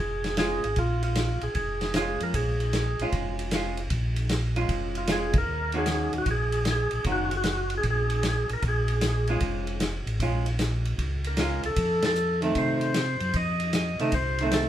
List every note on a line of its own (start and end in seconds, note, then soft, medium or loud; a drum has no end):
0.00 0.60 F1 medium
0.00 0.38 G#4 medium
0.24 snare soft
0.24 ride soft
0.37 0.61 G#3 medium
0.37 0.62 C#4 medium
0.37 0.62 F4 medium
0.37 0.79 G#4 medium
0.37 snare medium
0.37 hi-hat pedal medium
0.37 ride medium
0.64 0.76 G#1 medium
0.64 ride soft
0.76 1.38 A#1 medium
0.76 1.03 F4 medium
0.76 kick soft
0.76 ride medium
1.03 1.44 F4 medium
1.03 ride soft
1.15 snare medium
1.15 hi-hat pedal soft
1.15 ride medium
1.41 1.49 A#1 soft
1.41 1.54 G#4 medium
1.41 ride soft
1.55 2.17 F1 medium
1.55 1.95 G#4 medium
1.55 kick soft
1.55 ride soft
1.81 snare soft
1.81 ride soft
1.94 2.56 G#3 medium
1.94 2.56 C#4 medium
1.94 2.56 F4 medium
1.94 2.23 G#4 medium
1.94 snare medium
1.94 hi-hat pedal medium
1.94 ride medium
2.20 2.33 F2 medium
2.20 2.34 A#4 medium
2.20 ride soft
2.34 2.96 A#1 medium
2.34 3.09 G#4 medium
2.34 kick soft
2.34 ride medium
2.60 ride soft
2.73 snare medium
2.73 hi-hat pedal medium
2.73 ride medium
2.99 3.06 A#1 soft
2.99 3.50 G#3 medium
2.99 3.51 C#4 medium
2.99 3.51 F4 medium
2.99 ride soft
3.12 3.87 F1 medium
3.12 kick soft
3.12 ride medium
3.39 ride soft
3.51 3.77 G#3 medium
3.51 3.77 C#4 medium
3.51 snare medium
3.51 hi-hat pedal medium
3.51 ride medium
3.55 3.77 F4 medium
3.77 ride soft
3.90 4.66 A#1 medium
3.90 kick soft
3.90 ride medium
4.16 ride soft
4.29 snare medium
4.29 hi-hat pedal medium
4.29 ride medium
4.56 5.06 G#3 medium
4.56 5.06 C#4 medium
4.56 5.07 F4 medium
4.56 ride soft
4.69 5.44 F1 medium
4.69 kick soft
4.69 ride medium
4.95 5.09 F4 medium
4.95 ride soft
5.07 5.32 G#3 medium
5.07 5.33 C#4 medium
5.07 5.33 F4 medium
5.07 snare medium
5.07 hi-hat pedal medium
5.07 ride medium
5.12 5.38 G#4 medium
5.33 kick medium
5.33 ride medium
5.38 5.77 A#4 loud
5.46 6.09 D#2 medium
5.72 6.24 D#3 medium
5.72 6.24 A#3 medium
5.72 6.24 C#4 medium
5.72 6.25 F#4 medium
5.72 ride soft
5.78 6.13 G#4 medium
5.86 snare medium
5.86 hi-hat pedal medium
5.86 ride medium
6.13 6.20 D#2 soft
6.13 ride soft
6.18 6.30 F#4 medium
6.26 6.88 A#1 medium
6.26 kick soft
6.26 ride medium
6.31 6.69 G#4 medium
6.52 ride soft
6.65 snare medium
6.65 hi-hat pedal medium
6.65 ride medium
6.71 7.05 G#4 medium
6.91 6.99 A#1 soft
6.91 ride soft
7.04 7.80 F#1 medium
7.04 7.29 D#3 soft
7.04 7.30 A#3 medium
7.04 7.30 C#4 medium
7.04 7.30 F#4 medium
7.04 kick soft
7.04 ride medium
7.12 7.36 F#4 medium
7.31 ride soft
7.37 7.75 F#4 medium
7.44 snare medium
7.44 hi-hat pedal medium
7.44 ride medium
7.70 ride soft
7.77 7.87 G#4 medium
7.83 8.45 A#1 medium
7.83 kick soft
7.83 ride medium
7.90 8.27 G#4 medium
8.10 ride soft
8.23 snare medium
8.23 hi-hat pedal soft
8.23 ride medium
8.29 8.51 G#4 medium
8.49 8.56 A#1 soft
8.49 ride soft
8.53 8.64 A#4 medium
8.62 9.37 A#1 medium
8.62 kick soft
8.62 ride medium
8.68 9.40 G#4 medium
8.88 ride soft
9.01 snare medium
9.01 hi-hat pedal medium
9.01 ride medium
9.27 9.78 G#3 medium
9.27 9.79 C#4 medium
9.27 9.79 F4 medium
9.27 ride soft
9.40 10.03 F1 medium
9.40 kick soft
9.40 ride medium
9.67 ride soft
9.80 snare medium
9.80 hi-hat pedal medium
9.80 ride medium
10.06 10.19 A1 medium
10.06 ride soft
10.20 10.94 A#1 medium
10.20 10.44 G#3 medium
10.20 10.44 C#4 medium
10.20 10.45 F4 medium
10.20 kick soft
10.20 ride medium
10.46 ride soft
10.59 snare medium
10.59 hi-hat pedal medium
10.59 ride medium
10.85 ride soft
10.98 11.60 C#2 medium
10.98 kick soft
10.98 ride medium
11.24 11.62 A#4 medium
11.24 ride soft
11.37 11.61 G#3 medium
11.37 11.62 C#4 medium
11.37 11.63 F4 medium
11.37 snare medium
11.37 hi-hat pedal soft
11.37 ride medium
11.63 11.71 C#2 soft
11.63 12.05 A4 medium
11.63 ride soft
11.76 12.51 F2 medium
11.76 kick soft
11.76 ride medium
12.02 12.41 A4 loud
12.02 snare medium
12.02 ride medium
12.15 hi-hat pedal medium
12.42 12.92 D#3 medium
12.42 12.93 A3 medium
12.42 12.92 C4 medium
12.42 ride soft
12.55 13.17 C3 medium
12.55 13.37 C5 medium
12.55 kick soft
12.55 ride medium
12.81 ride soft
12.94 snare medium
12.94 hi-hat pedal medium
12.94 ride medium
13.20 13.33 F#2 medium
13.20 ride soft
13.34 13.95 F2 medium
13.34 13.73 D#5 loud
13.34 kick soft
13.34 ride medium
13.60 ride soft
13.73 14.14 D#5 medium
13.73 snare medium
13.73 hi-hat pedal medium
13.73 ride medium
13.99 14.12 C3 medium
13.99 14.12 D#3 medium
13.99 14.12 A3 medium
13.99 14.12 C4 medium
13.99 ride soft
14.12 14.69 C2 medium
14.12 14.54 C5 medium
14.12 kick soft
14.12 ride medium
14.39 14.69 D#3 medium
14.39 14.69 A3 medium
14.39 14.69 C4 medium
14.39 ride soft
14.52 14.69 A4 medium
14.52 snare medium
14.52 hi-hat pedal medium
14.52 ride medium